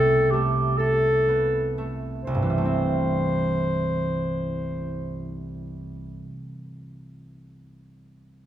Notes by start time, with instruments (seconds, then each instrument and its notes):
Already playing: harp C2 C3 A3 B3 C4 A4, clarinet A4
0.31 harp A3, clarinet G4
0.78 clarinet A4, harp A4
1.28 harp B3
1.78 harp A3
2.24 harp C2, clarinet C5
2.35 harp G2
2.42 harp E3
2.50 harp G3
2.58 harp A3
2.65 harp C4